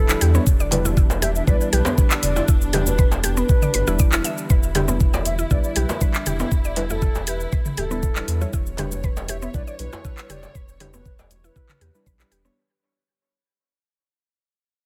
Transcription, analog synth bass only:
Already playing: D1
0.21 E2
0.47 E1
1.47 B1
1.73 B1
2.23 E1
2.48 E1
3.75 G1
3.88 E1
4.13 E1
4.50 E1
5.51 B1
5.76 B1
6.27 E1
6.51 E1
7.78 D1
8.28 E2
8.54 E1
9.54 B1
9.79 B1
10.29 E1
10.55 E1
11.81 E2
12.06 B1
12.31 E1

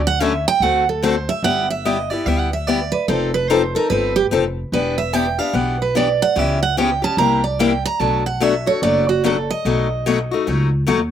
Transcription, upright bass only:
Already playing: D2
0.60 D2
1.43 G1
2.26 D2
3.08 F1
3.90 G1
4.32 F1
4.72 E1
5.54 B1
6.36 C#2
7.17 C2
8.00 B1
8.82 F#1
9.65 B1
10.48 C#2
10.89 D#2

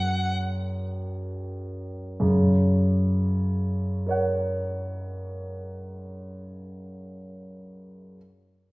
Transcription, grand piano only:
Already playing: F#2 A#3 C#4 F#4
2.20 F#2 C#3
4.06 A#4 C#5
4.11 F#5

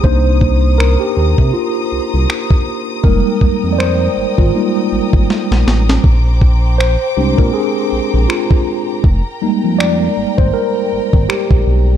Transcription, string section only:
Already playing: D#6
0.04 C5 A#5
3.04 A#4 G5 A#5
6.04 C5 G5 D6
9.04 A#4 G5

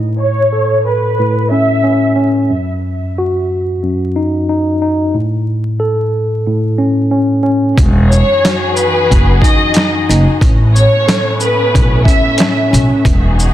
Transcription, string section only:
7.77 E3 D#4 F#4 G#4
10.42 A3 B3 C#4
13.06 E3 D#4 F#4 G#4

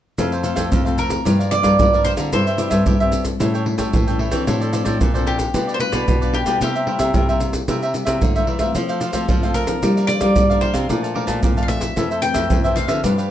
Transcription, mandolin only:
0.99 A#4
1.51 D5
2.04 C5
2.33 C5
5.27 G4
5.74 C5
5.80 B4
6.34 G4
6.62 G4
9.54 A#4
10.07 D5
10.61 C5
11.63 F5
11.68 E5
12.22 G5
12.76 F5

